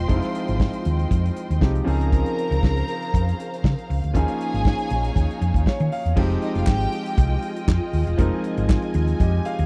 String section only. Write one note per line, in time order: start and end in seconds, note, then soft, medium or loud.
0.00 1.83 F4 medium
0.00 1.83 D#5 medium
0.00 1.83 G5 medium
1.85 4.12 C#3 medium
1.85 4.11 C5 medium
1.85 6.12 F5 medium
4.13 6.14 D#4 medium
4.13 6.14 C#5 medium
6.17 9.66 G#3 medium
6.17 9.66 F4 medium
6.17 9.66 D#5 medium
6.17 8.17 G5 medium
8.19 9.66 G#5 medium